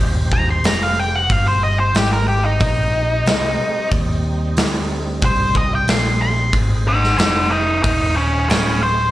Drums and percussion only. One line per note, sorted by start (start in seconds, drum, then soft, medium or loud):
0.32 kick medium
0.64 snare loud
0.64 open hi-hat medium
1.30 kick loud
1.30 open hi-hat soft
1.95 snare loud
1.95 open hi-hat medium
2.60 kick loud
2.60 open hi-hat medium
3.26 snare loud
3.26 open hi-hat medium
3.91 kick medium
3.91 open hi-hat soft
4.57 snare loud
4.57 open hi-hat medium
5.22 kick loud
5.22 open hi-hat medium
5.55 kick medium
5.88 snare loud
5.88 open hi-hat medium
6.53 kick loud
6.53 open hi-hat soft
7.04 snare soft
7.19 snare loud
7.19 open hi-hat medium
7.84 kick loud
7.84 open hi-hat medium
8.50 snare loud
8.50 open hi-hat medium